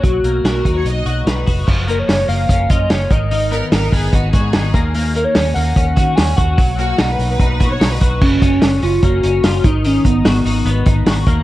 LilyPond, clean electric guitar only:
\new Staff \with { instrumentName = "Clean electric guitar" } { \time 4/4 \key fis \major \tempo 4 = 147 fis8 ais8 fis'8 dis'4 fis'8 dis'8 fis'8 | eis8 ais8 cis'8 ais8 cis'8 eis'8 cis'8 dis8 | dis8 b8 dis'8 b8 dis'8 fis'8 dis'8 ais8 | ais8 ais8 cis'8 ais8 cis'8 fis'8 cis'8 fis'8 |
fis8 ais8 dis'4 dis'8 fis'8 dis'8 fis'8 | r8 cis'4 cis'8 ais8 cis'8 eis'8 dis8 | dis8 dis'8 fis'8 dis'8 b8 dis'8 fis'8 ais8 | }